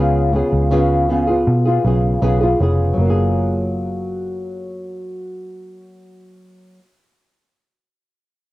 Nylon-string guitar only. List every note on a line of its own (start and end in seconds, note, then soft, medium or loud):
0.00 0.31 C#3 medium
0.00 0.32 B3 medium
0.00 0.33 F4 medium
0.00 0.35 G#4 medium
0.33 0.69 C#3 medium
0.33 0.70 B3 medium
0.33 0.70 F4 medium
0.33 0.72 G#4 medium
0.71 1.07 C#3 medium
0.71 1.09 B3 medium
0.71 1.10 F4 medium
0.71 1.10 G#4 medium
1.09 1.28 C#3 medium
1.09 1.29 B3 medium
1.09 1.28 F4 medium
1.09 1.26 G#4 medium
1.27 1.67 B3 soft
1.27 1.66 F4 soft
1.27 1.64 G#4 soft
1.65 1.85 B3 soft
1.65 1.85 F4 soft
1.65 1.85 G#4 medium
1.84 2.20 C#3 medium
1.84 2.21 B3 medium
1.84 2.22 F4 medium
1.84 2.23 G#4 medium
2.22 2.42 C#3 medium
2.22 2.42 B3 medium
2.22 2.42 F4 medium
2.22 2.40 G#4 medium
2.41 2.59 B3 soft
2.41 2.60 F4 soft
2.41 2.61 G#4 medium
2.59 2.98 C#3 medium
2.59 2.99 B3 medium
2.59 3.00 F4 medium
2.59 3.00 G#4 medium
2.93 6.78 F#3 medium
3.00 6.84 A#3 medium
3.05 6.90 F4 medium
3.10 6.95 G#4 medium